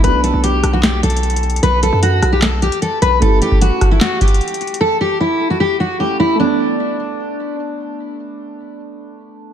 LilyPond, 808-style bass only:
\new Staff \with { instrumentName = "808-style bass" } { \clef bass \time 4/4 \key b \minor \tempo 4 = 151 b,,8. b,,8. b,,4 b,,4. | b,,8. fis,8. b,,4~ b,,16 r8. b,,8 | r1 | r1 |
r1 | r1 | }